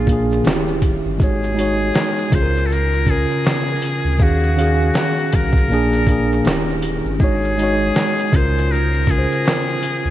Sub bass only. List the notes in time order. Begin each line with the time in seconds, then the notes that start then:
Already playing: A#1
0.46 D#1
1.05 G1
1.20 G#1
2.32 C#2
4.04 D2
4.20 D#2
5.34 C2
5.70 A#1
6.45 D#1
7.04 G1
7.20 G#1
8.33 C#2
10.05 D2